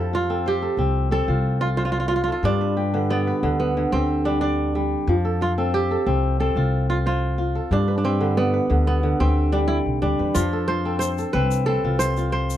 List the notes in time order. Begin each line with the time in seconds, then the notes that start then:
Already playing: F2 F3 E4 F4 G4 A4 B4
0.13 F4
0.30 C4 A4
0.46 G4 C5
0.62 A4
0.77 C2 C4
1.11 C4 A4
1.28 C2 F4
1.61 F4
1.77 F4 C5
1.85 F4
1.92 F4
2.00 F4
2.08 F4
2.16 F4
2.24 F4
2.28 A4
2.32 F4
2.43 G2 D4
2.61 B4
2.77 G4
2.94 D3 B4
3.10 B3 D5
3.27 B4
3.43 D2 D3
3.60 B3
3.77 D3
3.92 D2 C4 G4
4.25 G3 D4
4.41 D4 D5
4.75 G3
5.07 F2 F3
5.25 A4
5.41 F4
5.58 C4 A4
5.74 G4
5.91 A4
6.06 C2 C4
6.40 C4 A4
6.56 C2 F4
6.90 F4
7.06 F4 C5
7.38 F4
7.55 A4
7.71 G2 D4
7.88 B4
7.98 D4
8.04 C4 G4
8.20 D3 B4
8.37 B3 D5
8.54 B4
8.70 D2 D3
8.87 B3
9.03 D3
9.20 D2 C4 G4
9.52 G3 D4
9.68 E4 D5
9.86 B1
10.02 D2 G3 D4
10.19 E2 B4
10.35 F2 F3 F4, shaker
10.53 A4
10.68 F4 C5
10.85 C4 A4
10.99 C5, shaker
11.18 A4, shaker
11.33 C2 C4 B4
11.51 shaker
11.66 C4 A4
11.84 C2 F4
11.99 C5, shaker
12.17 F4, shaker
12.32 C5
12.50 shaker